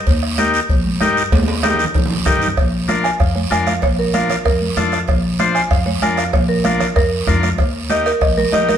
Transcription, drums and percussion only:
0.07 bombo low, cowbell, long guiro
0.23 bombo rim
0.38 bombo rim, high conga, short guiro
0.54 short guiro
0.69 bombo low, cowbell, long guiro
0.85 high conga
1.00 bombo rim, high conga, low timbale, short guiro
1.17 short guiro
1.32 bombo low, cowbell, high conga, high timbale, long guiro
1.43 high conga
1.48 high timbale
1.63 bombo rim, high conga, high timbale, short guiro
1.74 low conga
1.79 low timbale, short guiro
1.85 low conga
1.94 bombo low, cowbell, low conga, low timbale, long guiro
2.06 low conga
2.10 low timbale
2.16 low conga
2.26 bombo low, bombo rim, low conga, low timbale, short guiro
2.37 low conga
2.41 low timbale, short guiro
2.47 low conga
2.57 bombo low, bombo rim, cowbell, high conga, long guiro
2.89 bombo rim, high conga, short guiro
3.05 bombo rim, short guiro
3.20 bombo low, bombo rim, cowbell, high conga, long guiro
3.36 high conga
3.51 bombo rim, high conga, short guiro
3.67 bombo rim, high conga, short guiro
3.82 bombo low, bombo rim, cowbell, high conga, long guiro
4.14 bombo rim, high conga, short guiro
4.30 bombo rim, low conga, short guiro
4.45 bombo low, bombo rim, cowbell, high conga, long guiro
4.61 high conga
4.77 bombo rim, high conga, low conga, low timbale, short guiro
4.92 bombo rim, short guiro
5.08 bombo low, bombo rim, cowbell, high conga, long guiro
5.39 bombo rim, high conga, short guiro
5.55 bombo rim, short guiro
5.71 bombo low, bombo rim, cowbell, high conga, long guiro
5.87 high conga
6.02 bombo rim, high conga, short guiro
6.17 bombo rim, short guiro
6.33 bombo low, bombo rim, cowbell, high conga, long guiro
6.65 bombo rim, high conga, short guiro
6.80 bombo rim, low conga, short guiro
6.96 bombo low, bombo rim, cowbell, high conga, long guiro
7.27 bombo low, bombo rim, high conga, low conga, low timbale, short guiro
7.43 bombo rim, high conga, short guiro
7.58 bombo low, bombo rim, cowbell, high conga, long guiro
7.90 bombo rim, high conga, short guiro
8.06 bombo rim, short guiro
8.21 bombo low, bombo rim, cowbell, high conga, long guiro
8.37 high conga
8.53 bombo rim, high conga, low timbale, short guiro
8.69 bombo rim, high conga, short guiro

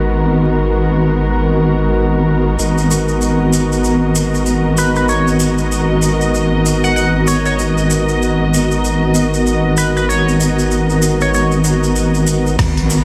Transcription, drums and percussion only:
2.59 maracas
2.78 maracas
2.91 maracas
3.08 maracas
3.21 maracas
3.53 maracas
3.72 maracas
3.84 maracas
4.15 maracas
4.34 maracas
4.46 maracas
4.77 maracas
4.95 maracas
5.09 maracas
5.27 maracas
5.40 maracas
5.58 maracas
5.72 maracas
6.02 maracas
6.21 maracas
6.34 maracas
6.66 maracas
6.84 maracas
6.97 maracas
7.27 maracas
7.46 maracas
7.59 maracas
7.78 maracas
7.90 maracas
8.08 maracas
8.22 maracas
8.54 maracas
8.71 maracas
8.84 maracas
9.15 maracas
9.34 maracas
9.46 maracas
9.77 maracas
9.97 maracas
10.10 maracas
10.29 maracas
10.40 maracas
10.59 maracas
10.71 maracas
10.90 maracas
11.02 maracas
11.21 maracas
11.34 maracas
11.51 maracas
11.64 maracas
11.83 maracas
11.96 maracas
12.14 maracas
12.27 maracas
12.46 maracas
12.59 kick, cross-stick, closed hi-hat, crash, maracas
12.77 closed hi-hat
12.90 maracas

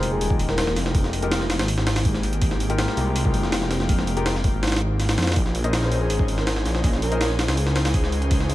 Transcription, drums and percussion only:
0.03 open hi-hat
0.21 open hi-hat
0.30 kick
0.39 open hi-hat
0.49 snare
0.58 snare, open hi-hat
0.67 snare
0.76 snare, open hi-hat
0.86 snare
0.95 kick, open hi-hat
1.04 snare
1.13 open hi-hat
1.22 closed hi-hat
1.31 snare, open hi-hat
1.41 snare
1.50 snare, open hi-hat
1.59 snare, open hi-hat
1.68 open hi-hat
1.78 snare
1.87 snare, open hi-hat
1.96 snare, open hi-hat
2.05 kick, open hi-hat
2.14 snare
2.23 open hi-hat
2.33 closed hi-hat
2.42 kick, open hi-hat
2.51 snare
2.60 open hi-hat
2.70 closed hi-hat
2.78 snare, open hi-hat
2.88 snare
2.97 open hi-hat
3.16 open hi-hat
3.25 kick
3.34 open hi-hat
3.43 snare
3.52 snare, open hi-hat
3.62 snare
3.71 snare, open hi-hat
3.80 snare
3.89 kick, open hi-hat
3.99 snare
4.07 open hi-hat
4.17 closed hi-hat
4.26 snare, open hi-hat
4.35 snare
4.44 kick, open hi-hat
4.63 snare, open hi-hat
4.67 snare, open hi-hat
4.72 snare, open hi-hat
4.76 snare, open hi-hat
5.00 snare, open hi-hat
5.09 snare, open hi-hat
5.18 snare, open hi-hat
5.22 snare, open hi-hat
5.27 snare, open hi-hat
5.32 snare, open hi-hat
5.36 kick, open hi-hat
5.46 snare
5.55 open hi-hat
5.64 closed hi-hat
5.73 snare, open hi-hat
5.83 snare
5.92 open hi-hat
6.10 open hi-hat
6.19 kick
6.28 open hi-hat
6.38 snare
6.47 snare, open hi-hat
6.56 snare
6.66 snare, open hi-hat
6.75 snare
6.84 kick, open hi-hat
6.93 snare
7.02 open hi-hat
7.12 closed hi-hat
7.21 snare, open hi-hat
7.30 snare
7.39 snare, open hi-hat
7.48 snare, open hi-hat
7.57 open hi-hat
7.67 snare
7.76 snare, open hi-hat
7.85 snare, open hi-hat
7.94 kick, open hi-hat
8.04 snare
8.12 open hi-hat
8.22 closed hi-hat
8.31 kick, open hi-hat
8.40 snare
8.50 open hi-hat

